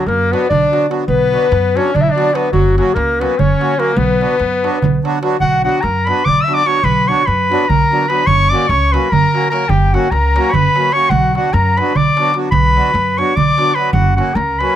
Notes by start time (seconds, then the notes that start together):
0.06 F#2 A#3 A#4, darbuka tek
0.30 F#3 B3 D4 F#4 B4, darbuka tek
0.49 B1 D4 D5, darbuka dum
0.63 darbuka tek
0.71 F#3 B3 D4 F#4, darbuka tek
0.88 F#3 B3 D4 F#4, darbuka tek
1.00 darbuka tek
1.08 B1 B3 B4, darbuka dum
1.21 darbuka tek
1.31 F#3 B3 D4 F#4, darbuka tek
1.42 darbuka tek
1.52 F#2, darbuka tek
1.75 F#3 B3 C#4 D4 F#4 C#5, darbuka tek
1.86 darbuka tek
1.95 B1 D4 D5, darbuka dum
2.01 E4 E5
2.07 D4, darbuka tek
2.12 F#3 D5
2.16 B3 D4 F#4, darbuka tek
2.33 F#3 B3 D4 F#4 B4, darbuka tek
2.44 darbuka tek
2.52 F#1 F#3 F#4, darbuka dum
2.65 darbuka tek
2.77 F#3 A#3 C#4 F#4, darbuka tek
2.87 darbuka tek
2.94 C#2 A#3 A#4, darbuka tek
3.19 F#3 A#3 B3 C#4 F#4 B4, darbuka tek
3.31 darbuka tek
3.38 F#1 C#4 C#5, darbuka dum
3.59 F#3 A#3 C#4 F#4, darbuka tek
3.76 F#3 A#3 C#4 F#4 A#4, darbuka tek
3.89 darbuka tek
3.96 B1 B3 B4, darbuka dum
4.09 darbuka tek
4.19 F#3 B3 D4 F#4, darbuka tek
4.31 darbuka tek
4.40 F#2, darbuka tek
4.52 darbuka tek
4.63 F#3 B3 D4 F#4, darbuka tek
4.73 darbuka tek
4.82 B1, darbuka dum
4.94 darbuka tek
5.03 F#3 B3 D4 F#4, darbuka tek
5.14 darbuka tek
5.22 F#3 B3 D4 F#4, darbuka tek
5.32 darbuka tek
5.40 B1 F#4 F#5, darbuka dum
5.63 F#3 B3 D4 F#4 F#5, darbuka tek
5.74 darbuka tek
5.81 F#2 A#4 A#5, darbuka tek
6.06 F#3 B3 D4 F#4 B5, darbuka tek
6.10 B4
6.16 darbuka tek
6.25 B1 D5 D6, darbuka dum
6.37 darbuka tek
6.41 E5 E6
6.47 F#3 B3 D4 F#4, darbuka tek
6.54 D5 D6
6.65 F#3 B3 D4 F#4 C#5 C#6, darbuka tek
6.76 darbuka tek
6.84 B1 B4 B5, darbuka dum
7.07 F#3 B3 D4 F#4 C#5 C#6, darbuka tek
7.26 F#2 B4 B5, darbuka tek
7.49 F#3 B3 D4 F#4, darbuka tek
7.61 darbuka tek
7.69 B1 A#4 A#5, darbuka dum
7.81 darbuka tek
7.91 F#3 B3 D4 F#4, darbuka tek
8.08 F#3 B3 D4 F#4 B4 B5, darbuka tek
8.19 darbuka tek
8.27 F#1 C#5 C#6, darbuka dum
8.40 darbuka tek
8.50 F#3 A#3 C#4 F#4 D5 D6, darbuka tek
8.61 darbuka tek
8.68 C#2 C#5 C#6, darbuka tek
8.92 F#3 A#3 C#4 F#4 B4 B5, darbuka tek
9.04 darbuka tek
9.10 F#1 A#4 A#5, darbuka dum
9.24 darbuka tek
9.34 F#3 A#3 C#4 F#4, darbuka tek
9.50 F#3 A#3 C#4 F#4 A#4 A#5, darbuka tek
9.61 darbuka tek
9.69 F#1 G4 G5, darbuka dum
9.82 darbuka tek
9.92 F#3 A#3 C#4 F#4 F#5, darbuka tek
10.04 darbuka tek
10.11 C#2 A#4 A#5, darbuka tek
10.24 darbuka tek
10.36 F#3 A#3 C#4 F#4, darbuka tek
10.45 darbuka tek
10.49 C#5 B5 C#6
10.53 F#1 B4, darbuka dum
10.65 darbuka tek
10.76 F#3 A#3 C#4 F#4, darbuka tek
10.84 darbuka tek
10.92 F#3 A#3 C#4 F#4 C#5 C#6, darbuka tek
11.02 darbuka tek
11.10 B1 F#4 F#5, darbuka dum
11.23 darbuka tek
11.35 F#3 B3 D4 F#4 F#5, darbuka tek
11.44 darbuka tek
11.53 F#2 A#4 A#5, darbuka tek
11.77 F#3 B3 D4 F#4 B4 B5, darbuka tek
11.87 darbuka tek
11.95 B1 D5 D6, darbuka dum
12.06 darbuka tek
12.17 F#3 B3 D4 F#4, darbuka tek
12.34 F#3 B3 D4 F#4, darbuka tek
12.44 darbuka tek
12.51 B1 B4 B5, darbuka dum
12.65 darbuka tek
12.75 F#3 B3 D4 F#4, darbuka tek
12.94 F#2, darbuka tek
13.18 F#3 B3 D4 F#4 C#5 C#6, darbuka tek
13.27 darbuka tek
13.36 B1 D5 D6, darbuka dum
13.48 darbuka tek
13.57 F#3 B3 D4 F#4, darbuka tek
13.75 F#3 B3 D4 F#4 B4 B5, darbuka tek
13.84 darbuka tek
13.93 F#1 F#4 F#5, darbuka dum
14.06 darbuka tek
14.16 F#3 A#3 C#4 F#4 F#5, darbuka tek
14.34 C#2 A#4 A#5, darbuka tek
14.59 F#3 A#3 C#4 F#4 B4 B5, darbuka tek
14.71 darbuka tek